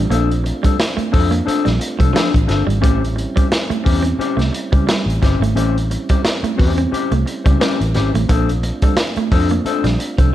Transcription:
Already playing: tonewheel organ A3 C4 D4 F4
0.10 fingered electric bass A#1, clean electric guitar A#3 D4 A4 C5, closed hi-hat
0.31 closed hi-hat
0.44 muted clean electric guitar stroke, closed hi-hat
0.63 clean electric guitar G3 D4 A4 C5, kick, closed hi-hat
0.80 muted clean electric guitar stroke, snare, closed hi-hat
0.97 clean electric guitar A3, muted fingered electric bass stroke, muted clean electric guitar stroke, closed hi-hat
1.12 fingered electric bass F2, clean electric guitar D4 A4 C5, muted clean electric guitar stroke, kick, open hi-hat
1.31 clean electric guitar A#3, muted clean electric guitar stroke, closed hi-hat
1.46 clean electric guitar D4 A4 C5, muted fingered electric bass stroke, closed hi-hat
1.65 fingered electric bass A#1, clean electric guitar G3, snare, closed hi-hat
1.80 muted clean electric guitar stroke, closed hi-hat
1.99 fingered electric bass C2, clean electric guitar F3 D4 A4 C5, kick, closed hi-hat
2.13 clean electric guitar F3 D4 A4 C5, snare, closed hi-hat
2.32 fingered electric bass A1, muted clean electric guitar stroke, kick, closed hi-hat
2.47 fingered electric bass G1, clean electric guitar D4 A4 C5, muted clean electric guitar stroke, snare, closed hi-hat
2.66 fingered electric bass G#1, clean electric guitar G3, muted clean electric guitar stroke, closed hi-hat
2.81 fingered electric bass A1, tonewheel organ G3 C#4 E4, clean electric guitar A3 C#4 G4 C5, kick, closed hi-hat
3.04 closed hi-hat
3.16 muted clean electric guitar stroke, closed hi-hat
3.36 clean electric guitar G3 C#4 G4 C5, kick, closed hi-hat
3.50 muted clean electric guitar stroke, snare, closed hi-hat
3.69 clean electric guitar A3, muted clean electric guitar stroke, muted fingered electric bass stroke, closed hi-hat
3.84 fingered electric bass E2, clean electric guitar C#4 G4 C5, muted clean electric guitar stroke, kick, open hi-hat
4.03 clean electric guitar C4, muted clean electric guitar stroke, closed hi-hat
4.19 clean electric guitar C#4 G4 C5, muted fingered electric bass stroke, closed hi-hat
4.37 fingered electric bass C2, clean electric guitar A3, snare, closed hi-hat
4.53 muted clean electric guitar stroke, closed hi-hat
4.72 fingered electric bass C#2, clean electric guitar G3 C#4 G4 C5, kick, closed hi-hat
4.87 clean electric guitar G3, muted clean electric guitar stroke, snare, closed hi-hat
5.06 fingered electric bass A1, muted clean electric guitar stroke, closed hi-hat
5.22 fingered electric bass G1, clean electric guitar C#4 G4 C5, muted clean electric guitar stroke, kick, snare, closed hi-hat
5.40 fingered electric bass G#1, clean electric guitar A3, muted clean electric guitar stroke, closed hi-hat
5.54 fingered electric bass A1, clean electric guitar A3 C#4 G4 C5, closed hi-hat
5.78 closed hi-hat
5.91 muted clean electric guitar stroke, closed hi-hat
6.09 clean electric guitar G3 C#4 G4 C5, kick, closed hi-hat
6.24 muted clean electric guitar stroke, snare, closed hi-hat
6.42 clean electric guitar A3, muted clean electric guitar stroke, muted fingered electric bass stroke, closed hi-hat
6.57 fingered electric bass E2, clean electric guitar C#4 G4 C5, muted clean electric guitar stroke, kick, open hi-hat
6.77 clean electric guitar C4, muted clean electric guitar stroke, closed hi-hat
6.91 clean electric guitar C#4 G4 C5, muted fingered electric bass stroke, closed hi-hat
7.12 fingered electric bass C2, clean electric guitar A3, closed hi-hat
7.26 muted clean electric guitar stroke, closed hi-hat
7.44 fingered electric bass C#2, clean electric guitar G3 C#4 G4 C5, kick, closed hi-hat
7.60 clean electric guitar G3 C#4 G4 C5, snare, closed hi-hat
7.80 fingered electric bass A1, muted clean electric guitar stroke, closed hi-hat
7.94 fingered electric bass G#1, clean electric guitar C#4 G4 C5, muted clean electric guitar stroke, snare, closed hi-hat
8.14 fingered electric bass A1, clean electric guitar A3, muted clean electric guitar stroke, closed hi-hat
8.29 fingered electric bass A#1, tonewheel organ A3 D4 F4, clean electric guitar A#3 D4 A4 C5, kick, closed hi-hat
8.49 closed hi-hat
8.63 muted clean electric guitar stroke, closed hi-hat
8.82 clean electric guitar G3 D4 A4 C5, kick, closed hi-hat
8.97 muted clean electric guitar stroke, snare, closed hi-hat
9.16 clean electric guitar A3, muted fingered electric bass stroke, muted clean electric guitar stroke, closed hi-hat
9.31 fingered electric bass F2, clean electric guitar D4 A4 C5, muted clean electric guitar stroke, kick, open hi-hat
9.49 clean electric guitar A#3, muted clean electric guitar stroke, closed hi-hat
9.65 clean electric guitar D4 A4 C5, muted fingered electric bass stroke, closed hi-hat
9.84 fingered electric bass A#1, clean electric guitar G3, snare, closed hi-hat
10.00 muted clean electric guitar stroke, closed hi-hat
10.18 fingered electric bass C2, clean electric guitar F3 D4 A4 C5, kick, closed hi-hat

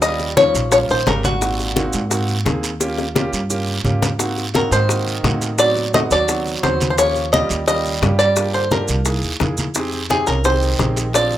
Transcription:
Already playing: upright bass D#2
0.01 grand piano G3 A#3 C#4 F4, tenor saxophone G3, five-string banjo D#5, high bongo, high conga, long guiro, maracas
0.20 high bongo, high conga, maracas
0.36 tenor saxophone F3, grand piano G3 A#3 C#4 D#4, five-string banjo C#5, high bongo, high conga, short guiro, maracas
0.54 upright bass A#1, high bongo, high conga, short guiro, maracas
0.71 tenor saxophone F3, grand piano G3 A#3 C#4 F4, five-string banjo C#5, high bongo, high conga, long guiro, maracas
0.89 upright bass A#1, tenor saxophone D#3, five-string banjo C5, high conga, maracas
1.06 upright bass G#1, tenor saxophone C#3, grand piano G3 A#3 C#4 G4, five-string banjo A#4, high bongo, low bongo, high conga, short guiro, maracas
1.23 tenor saxophone A#2, five-string banjo F#4, high bongo, high conga, short guiro, maracas
1.41 grand piano A#3 C4 D#4 F#4, high bongo, high conga, long guiro, maracas
1.59 high bongo, high conga, maracas
1.76 grand piano A#3 C4 D#4 F#4, high bongo, high conga, short guiro, maracas
1.93 upright bass G#2, high bongo, short guiro, maracas
2.10 grand piano A#3 C4 D#4 F#4, high bongo, high conga, long guiro, maracas
2.28 high conga, maracas
2.45 upright bass D#2, grand piano A#3 C4 D#4 G#4, high bongo, low bongo, high conga, short guiro, maracas
2.63 high bongo, high conga, short guiro, maracas
2.80 grand piano A#3 C#4 F4 G4, high bongo, high conga, long guiro, maracas
2.98 high bongo, high conga, maracas
3.15 grand piano A#3 C#4 F4 G4, high bongo, high conga, short guiro, maracas
3.32 upright bass G2, high conga, short guiro, maracas
3.50 grand piano A#3 C#4 F4 G4, high conga, long guiro, maracas
3.67 high conga, maracas
3.84 upright bass G#2, grand piano A#3 C#4 F4 G4, high conga, short guiro, maracas
4.02 low bongo, high conga, short guiro, maracas
4.19 grand piano A#3 C4 D#4 F#4, high bongo, high conga, long guiro, maracas
4.37 high bongo, high conga, maracas
4.54 tenor saxophone D#3, grand piano A#3 C4 D#4 F#4, five-string banjo A#4, high bongo, high conga, short guiro, maracas
4.71 upright bass G#2, tenor saxophone D#3, five-string banjo C5, high bongo, short guiro, maracas
4.89 grand piano A#3 C4 D#4 F#4, high bongo, high conga, long guiro, maracas
5.07 high conga, maracas
5.23 upright bass A2, grand piano A#3 C4 D#4 F#4, high bongo, low bongo, high conga, short guiro, maracas
5.41 high bongo, high conga, short guiro, maracas
5.58 tenor saxophone F#3, grand piano B3 C4 D#4 F#4, five-string banjo D5, high bongo, high conga, long guiro, maracas
5.76 high bongo, high conga, maracas
5.93 tenor saxophone A3, grand piano B3 C4 D#4 F#4, five-string banjo D#5, high bongo, high conga, short guiro, maracas
6.11 upright bass D#2, tenor saxophone F#3, five-string banjo D5, high bongo, high conga, short guiro, maracas
6.28 grand piano B3 C4 D#4 F#4, high bongo, high conga, long guiro, maracas
6.46 high conga, maracas
6.63 upright bass D#2, tenor saxophone F#3, grand piano B3 C4 D#4 F#4, five-string banjo C5, high bongo, low bongo, high conga, short guiro, maracas
6.80 high bongo, high conga, short guiro, maracas
6.90 tenor saxophone F3, five-string banjo C5
6.98 tenor saxophone F3, grand piano A#3 C#4 F4 G4, five-string banjo C#5, high bongo, high conga, long guiro, maracas
7.16 high bongo, high conga, maracas
7.32 tenor saxophone G3, grand piano A#3 C#4 F4 G4, five-string banjo D#5, high bongo, high conga, short guiro, maracas
7.49 upright bass D#2, high bongo, short guiro, maracas
7.66 tenor saxophone G3, grand piano A#3 C#4 F4 G4, five-string banjo D#5, high bongo, high conga, long guiro, maracas
7.85 high conga, maracas
8.01 upright bass G2, grand piano A#3 C#4 F4 G4, high bongo, low bongo, high conga, short guiro, maracas
8.19 tenor saxophone G3, five-string banjo D5, high bongo, high conga, short guiro, maracas
8.36 grand piano A#3 D4 F4 G4, high bongo, high conga, long guiro, maracas
8.54 tenor saxophone D3, five-string banjo C5, high bongo, high conga, maracas
8.70 tenor saxophone D3, grand piano A#3 D4 F4 G4, five-string banjo A#4, high bongo, high conga, short guiro, maracas
8.88 upright bass C2, high bongo, high conga, short guiro, maracas
9.05 grand piano A#3 D#4 E4 G#4, high bongo, high conga, long guiro, maracas
9.22 high conga, maracas
9.40 upright bass F2, grand piano A#3 D#4 E4 G#4, high bongo, low bongo, high conga, short guiro, maracas
9.57 high bongo, high conga, short guiro, maracas
9.74 grand piano C4 D#4 G4 G#4, high bongo, high conga, long guiro, maracas
9.92 high bongo, high conga, maracas
10.09 tenor saxophone C3, grand piano C4 D#4 G4 G#4, five-string banjo G#4, high bongo, high conga, short guiro, maracas
10.27 upright bass C2, tenor saxophone C#3, five-string banjo A#4, high bongo, short guiro, maracas
10.44 tenor saxophone D#3, grand piano C4 D#4 G4 G#4, five-string banjo C5, high bongo, high conga, long guiro, maracas
10.62 high conga, maracas
10.79 upright bass A#1, grand piano C4 D#4 G4 G#4, high bongo, low bongo, high conga, short guiro, maracas
10.96 high bongo, high conga, short guiro, maracas
11.13 tenor saxophone F3, grand piano C4 D4 F4 G#4, five-string banjo D5, high bongo, high conga, long guiro, maracas
11.31 high bongo, high conga, maracas

